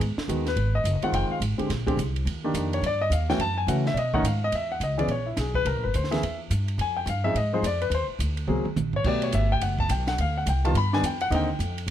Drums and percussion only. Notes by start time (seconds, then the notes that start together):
0.01 ride
0.18 snare
0.29 hi-hat pedal, ride
0.46 snare, ride
0.57 ride
0.85 hi-hat pedal, ride
1.02 ride
1.14 ride
1.42 hi-hat pedal, ride
1.59 ride
1.70 snare, ride
1.87 kick, ride
1.99 hi-hat pedal, ride
2.16 ride
2.27 ride
2.55 hi-hat pedal, ride
2.73 ride
2.84 ride
3.12 hi-hat pedal, ride
3.30 snare
3.40 ride
3.68 hi-hat pedal, ride
3.86 snare
3.97 ride
4.14 kick
4.25 hi-hat pedal, ride
4.52 ride
4.81 hi-hat pedal, ride
4.99 ride
5.08 ride
5.37 snare, hi-hat pedal, ride
5.54 kick
5.66 ride
5.94 hi-hat pedal, ride
6.04 snare
6.12 snare, ride
6.23 ride
6.51 hi-hat pedal, ride
6.68 ride
6.79 ride
7.07 hi-hat pedal, ride
7.36 ride
7.64 hi-hat pedal, ride
7.82 ride
7.92 ride
8.20 hi-hat pedal, ride
8.37 ride
8.47 mid tom
8.65 mid tom
8.76 hi-hat pedal, mid tom
8.93 floor tom
9.04 kick, crash
9.22 ride
9.32 hi-hat pedal, ride
9.61 ride
9.79 kick
9.89 hi-hat pedal, ride
10.07 snare, ride
10.18 ride
10.47 hi-hat pedal, ride
10.65 ride
10.75 ride
10.93 snare
11.04 hi-hat pedal, ride
11.21 ride
11.32 ride
11.60 hi-hat pedal, ride
11.78 ride